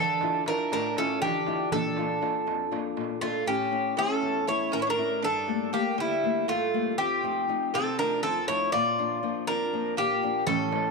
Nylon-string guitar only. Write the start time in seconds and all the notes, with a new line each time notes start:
Already playing: D3
0.22 D4 E4 F4
0.47 D4 E4 F4
0.72 A2
0.97 D4 E4 F4
1.23 D3
1.48 D4 E4 F4
1.72 A#2
1.97 A#3 D4 F4
2.21 A#3 D4 F4
2.47 F2
2.71 A#3 D4 F4
2.97 A#2
3.22 A#3 D4 F4
3.46 A2
3.71 A3 C#4 E4
3.97 A3 C#4 E4
4.22 E2
4.48 A3 C#4 E4
4.73 A2
4.98 A3 C#4 E4
5.23 G2
5.48 G3 A3 A#3
5.73 G3 A3 A#3
5.98 D3
6.23 G3 A3 A#3
6.48 G2
6.74 G3 A3 A#3
6.99 F2
7.23 F3 A3 D#4
7.49 F3 A3 D#4
7.74 C3
7.99 F3 A3 D#4
8.24 F2
8.49 F3 A3 D#4
8.74 A#2
8.98 F3 A#3 D4
9.23 F3 A#3 D4
9.48 F2
9.73 F3 A#3 D4
9.98 A#2
10.23 F3 A#3 D4
10.47 A2
10.71 E3 A3 C#4